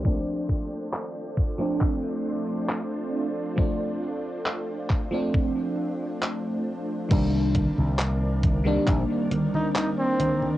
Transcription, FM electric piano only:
\new Staff \with { instrumentName = "FM electric piano" } { \time 4/4 \key c \dorian \tempo 4 = 68 <f a c' d'>4.~ <f a c' d'>16 <f a c' d'>2~ <f a c' d'>16 | <f a c' d'>4.~ <f a c' d'>16 <f a c' d'>2~ <f a c' d'>16 | <ees g bes d'>4.~ <ees g bes d'>16 <ees g bes d'>2~ <ees g bes d'>16 | }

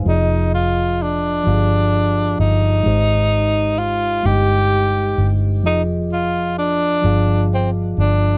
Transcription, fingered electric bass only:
\new Staff \with { instrumentName = "Fingered electric bass" } { \clef bass \time 6/8 \key f \dorian \tempo 4. = 43 f,,4. g,,4 g,,8 | aes,,4. g,,4 g,,8 | f,,4. g,,4 g,,8 | }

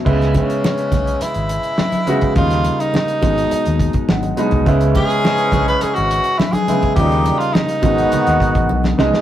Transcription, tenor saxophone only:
\new Staff \with { instrumentName = "Tenor saxophone" } { \time 4/4 \key cis \minor \tempo 4 = 104 r8 cis'4. e'2 | eis'8. dis'2~ dis'8. r8 | r8 gis'4~ gis'16 b'16 gis'16 fis'8. e'16 gis'8. | g'8. eis'16 dis'2~ dis'8 r8 | }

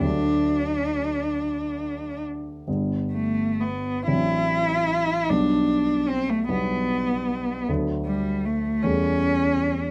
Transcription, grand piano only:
\new Staff \with { instrumentName = "Grand piano" } { \clef bass \time 6/8 \key g \major \tempo 4. = 50 <d, fis a d'>2. | <g,, g b d'>4. <a,, fis c' d'>4. | <b,, g b d'>4. <b,, g b d'>4. | <d, fis a d'>4. <e, g a cis'>4. | }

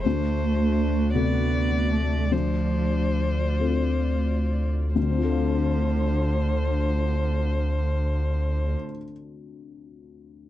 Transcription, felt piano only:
\new Staff \with { instrumentName = "Felt piano" } { \time 6/8 \key d \minor \tempo 4. = 43 d,4. <c fis' a'>4. | d,4. <c' f' a'>4. | <d, d c' f' a' f''>2.~ | <d, d c' f' a' f''>2. | }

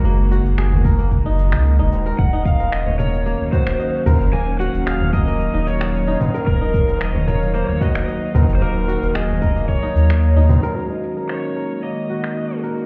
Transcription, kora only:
\new Staff \with { instrumentName = "Kora" } { \time 4/4 \key ees \minor \tempo 4 = 112 bes16 r16 ges'16 r16 aes'8 bes'16 bes8 ees'8 ees''8 ees'8 bes'16 | r16 ees'16 r16 bes'8 des''16 bes'16 r16 bes16 r16 ges'16 r16 ees''16 r16 bes'8 | bes16 r16 ges'16 r16 aes'8 bes'16 bes8 ees'8 ees''8 ees'8 bes'16 | r16 ees'16 r16 bes'8 des''16 bes'16 r16 bes16 r16 ges'16 r16 ees''16 r16 bes'8 |
bes16 r16 ges'16 r16 aes'8 bes'16 bes8 ees'8 ees''8 ees'8 bes'16 | r16 ees'16 r16 bes'8 des''16 bes'16 r16 bes16 r16 ges'16 r16 ees''16 r16 bes'8 | }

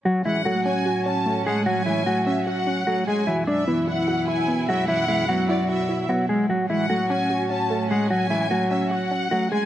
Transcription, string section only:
\new Staff \with { instrumentName = "String section" } { \clef bass \time 4/4 \key fis \minor \tempo 4 = 149 << { <a, cis'>1~ | <a, cis'>1 | <fis, b, e'>1~ | <fis, b, e'>1 |
<a, cis'>1~ | <a, cis'>1 | } \\ { fis1~ | fis1~ | fis1~ | fis1~ |
fis1~ | fis1 | } >> }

